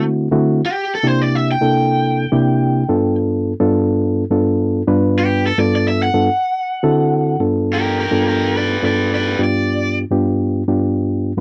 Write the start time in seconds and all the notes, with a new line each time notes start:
Already playing: D3 A3 C4 E4 F#4
0.31 D3 A3 C4 E4 F#4
0.66 G4
0.95 A4
1.03 C3 A#3 D4 E4 G4 C5
1.22 D5
1.35 E5
1.52 G5
1.61 C3 A#3 D4 E4 A4
2.32 C3 A#3 D4 E4 G4
2.89 G2 B3 D4 F4 A4
3.60 G2 B3 D4 F4 A4
4.31 G2 B3 D4 F4 A4
4.88 G2 B3 D4 F4 B4
5.19 G4
5.47 A4
5.58 G2 B3 D4 F4 A4 D5
5.76 D5
5.88 E5
6.03 F#5
6.14 G2 B3 D4 F4 A4
6.83 D3 C4 E4 F#4 A4
7.40 G2 B3 D4 F4 A4
7.73 G4 A#4
8.00 G4 A#4
8.11 G2 B3 D4 F4 A4
8.27 G4 A#4
8.56 B4 D5
8.82 G2 B3 D4 F4 A4 B4 D5
9.14 B4 D5
9.39 G2 B3 D4 F4 G4
9.44 D5
10.11 G2 B3 D4 F4 G4
10.68 G2 B3 D4 F4 G4